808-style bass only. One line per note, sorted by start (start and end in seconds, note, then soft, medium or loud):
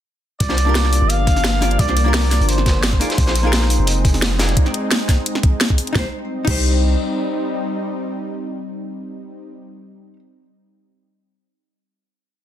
0.40 1.00 C2 loud
1.02 1.78 G1 medium
1.79 2.39 C2 loud
2.40 2.99 G1 medium
3.18 3.78 A#1 loud
3.79 4.55 F1 medium
5.95 6.05 C2 loud
6.47 6.96 C2 loud